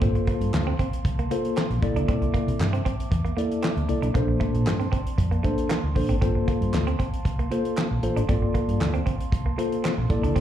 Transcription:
Already playing: A#3 F5 A5 C6
0.01 G1 A#3 C4 F4 A4 C5, kick, closed hi-hat
0.15 muted clean electric guitar stroke, closed hi-hat
0.27 A#3, kick, closed hi-hat
0.41 G2, closed hi-hat
0.53 D2, muted clean electric guitar stroke, snare, clap
0.67 C4
0.79 C4, kick, closed hi-hat
0.93 closed hi-hat
1.05 C2, muted clean electric guitar stroke, kick, closed hi-hat
1.19 A#3, closed hi-hat
1.30 A#3 F4 A4 C5, closed hi-hat
1.45 closed hi-hat
1.57 C4, snare, clap
1.70 A#1, closed hi-hat
1.82 C2 A#3 E4 A4 D5 E5 D6, muted clean electric guitar stroke, kick, closed hi-hat
1.96 C#2 D4, closed hi-hat
2.08 C2 C4, kick, closed hi-hat
2.22 muted clean electric guitar stroke, closed hi-hat
2.34 A#3, kick, closed hi-hat
2.48 C3, closed hi-hat
2.60 G2, muted clean electric guitar stroke, snare, clap
2.73 C4, closed hi-hat
2.85 C4, kick, closed hi-hat
3.00 closed hi-hat
3.11 E2, muted clean electric guitar stroke, kick, closed hi-hat
3.25 A#3, closed hi-hat
3.37 A#3 E4 A4 D5, closed hi-hat
3.52 closed hi-hat
3.63 C4, snare, clap
3.77 D2, closed hi-hat
3.89 C2 A#3 E4 A4 D5, muted clean electric guitar stroke, closed hi-hat
4.02 B1 D4, closed hi-hat
4.14 A#1 A#3 D4 A4 C5 D5 A5 C6, kick, closed hi-hat
4.28 muted clean electric guitar stroke
4.40 A3, kick, closed hi-hat
4.54 A#2, closed hi-hat
4.66 G2, muted clean electric guitar stroke, snare, clap
4.80 C4, closed hi-hat
4.92 C4, kick, closed hi-hat
5.07 closed hi-hat
5.18 F2, muted clean electric guitar stroke, kick, closed hi-hat
5.31 A#3, closed hi-hat
5.43 A3 A#3 D4 A4 C5, kick, closed hi-hat
5.58 closed hi-hat
5.69 A#3, snare, clap
5.84 D2
5.95 A1 A#3 D4 A4 C5, muted clean electric guitar stroke, kick, open hi-hat
6.09 G#1 C4, closed hi-hat
6.21 G1 A#3 C4 F4 A4 C5 F5, kick, closed hi-hat
6.35 muted clean electric guitar stroke
6.48 A#3, kick, closed hi-hat
6.61 G2, closed hi-hat
6.73 D2, muted clean electric guitar stroke, snare, clap
6.87 C4, closed hi-hat
6.99 C4, kick, closed hi-hat
7.14 closed hi-hat
7.25 C2, muted clean electric guitar stroke, kick, closed hi-hat
7.39 A#3, closed hi-hat
7.51 A#3 F4 A4 C5, closed hi-hat
7.65 closed hi-hat
7.77 C4, snare, clap
7.91 A#1
8.03 A1 A#3 F4 A4 C5, muted clean electric guitar stroke, closed hi-hat
8.16 G#1 D4, closed hi-hat
8.29 G1 A#3 C4 F4 A4 D5, kick, closed hi-hat
8.42 muted clean electric guitar stroke
8.54 A#3, kick, closed hi-hat
8.68 G2, closed hi-hat
8.80 D2, muted clean electric guitar stroke, snare, clap
8.94 C4, closed hi-hat
9.06 C4, kick, closed hi-hat
9.21 closed hi-hat
9.32 C2, muted clean electric guitar stroke, kick, closed hi-hat
9.46 A#3
9.57 A#3 F4 A4 C5, closed hi-hat
9.72 closed hi-hat
9.84 C4, snare, clap
9.98 A#1
10.09 C2 A#3 E4 A4 D5 E5 D6, muted clean electric guitar stroke, kick, closed hi-hat
10.23 C#2 D4, closed hi-hat
10.36 C2 C4, kick, closed hi-hat

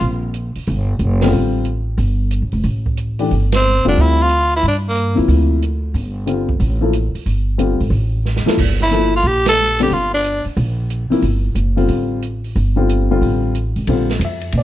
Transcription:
Already playing: D3 G3 C4 F4
0.00 A#1, open hi-hat
0.34 closed hi-hat
0.55 muted upright bass stroke, open hi-hat
0.67 G1, open hi-hat
0.99 F#1, closed hi-hat
1.21 D3 G3 C4 F4, snare
1.32 A1, open hi-hat
1.65 closed hi-hat
1.98 G1, open hi-hat
2.31 closed hi-hat
2.42 A1
2.52 F1, open hi-hat
2.63 A1, open hi-hat
2.86 kick
2.97 closed hi-hat
3.19 E3 A3 D4 G4, open hi-hat
3.31 G1, open hi-hat
3.52 C4, snare, ride
3.84 F1 D3 G3 C4 D4 F4, open hi-hat
3.96 D2, open hi-hat
4.01 E4
4.22 F4
4.29 closed hi-hat
4.50 open hi-hat
4.56 E4
4.63 G2, open hi-hat
4.68 D4
4.89 A#3
4.95 closed hi-hat
5.15 F2 C3 F3 A#3 E4, open hi-hat
5.28 D2, open hi-hat
5.62 closed hi-hat
5.94 G1, open hi-hat
6.26 D3 G3 C4 F4, closed hi-hat
6.49 kick
6.60 A1, open hi-hat
6.81 F3 A#3 E4 A4
6.93 closed hi-hat
7.14 muted upright bass stroke, open hi-hat
7.26 G1, open hi-hat
7.58 D3 G3 C4 F4, closed hi-hat
7.80 G#1, open hi-hat
7.90 A1, open hi-hat
8.25 snare
8.36 snare
8.46 F3 A#3 E4 A4, muted upright bass stroke, snare
8.58 G1, kick, crash
8.80 E4, snare
8.91 F3 A#3 E4 A4, closed hi-hat
9.16 F4
9.23 A#1 G4, open hi-hat
9.46 A4, snare, ride
9.79 D3 G3 C4 D4 G4, snare, open hi-hat
9.91 G1 F4, open hi-hat
10.14 D4
10.24 closed hi-hat
10.45 muted upright bass stroke, open hi-hat
10.57 A#1, open hi-hat
10.90 closed hi-hat
11.10 C3 F3 A#3 E4, muted upright bass stroke, open hi-hat
11.22 G1, open hi-hat
11.55 F#1, closed hi-hat
11.76 D3 G3 C4 F4, open hi-hat
11.88 A1, open hi-hat
12.22 closed hi-hat
12.44 open hi-hat
12.56 G1, open hi-hat
12.76 D3 G3 C4 F4
12.89 closed hi-hat
13.10 D3 G3 C4 F4
13.21 A1, open hi-hat
13.55 closed hi-hat
13.76 G#1, open hi-hat
13.87 A#1 D3 G3 C4 F4, ride
14.09 snare
14.19 F2, hi-hat pedal, ride
14.25 E5
14.41 ride
14.52 A#2, ride
14.58 D5

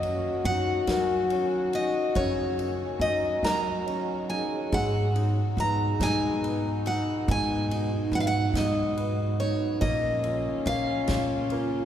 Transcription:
Already playing: F#2 D#3 F#3 A#3 F#4 D#5 F5 F#5
0.03 C#4, ride
0.44 F#2 D#4 C#5 F#5, ride
0.72 F#5
0.87 F#3 A#4, snare, ride
0.98 G#5
1.30 C#4, ride
1.73 D#4 D#5, ride
2.15 F#2 C#3 C#5, kick, ride
2.59 C#4, ride
2.85 G#5
2.99 F#2 D#4 D#5, ride
3.43 F#3 A#4 D#5 A#5, snare, ride
3.86 C#4, ride
4.30 D#4 G#4 G#5, ride
4.56 C#5
4.70 G#2 G#3 D#4 F#5, kick, ride
4.74 B2 G#3
5.15 D#4, ride
5.57 G#2 B4 A#5, ride
6.00 G#2 D#4 G#5, snare, ride
6.43 B4, ride
6.86 D#4 F#5, ride
7.27 G#2 D#3 F#3 G#5, kick, ride
7.71 D#4, ride
8.12 G#2 B4 F#5, ride
8.20 F5
8.27 F#5
8.53 G#2 D#4 D#5, snare, ride
8.97 B4, ride
9.40 D#4 C#5, ride
9.78 A#1 C#3 A#3 C#4 F4 D#5, kick, ride
10.24 F4, ride
10.66 A#1 A#3 F5, ride
11.08 A#2 F4, snare, ride
11.50 A#3 F4, ride

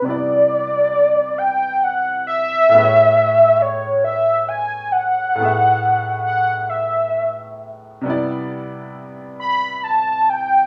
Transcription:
0.02 C3 G3 B3 D5
0.08 E4 D5
1.38 G5
1.83 F#5
2.27 E5
2.69 A2 A3
2.74 B3 G#4 B4
2.84 C#5
3.62 C#5
4.04 E5
4.48 G#5
4.92 F#5
5.35 A2 A3
5.40 B3 G#4
5.45 E5
6.26 F#5
6.69 E5
8.01 C3 G3
8.06 B3 E4
8.10 D5
9.40 B5
9.83 A5
10.29 G5

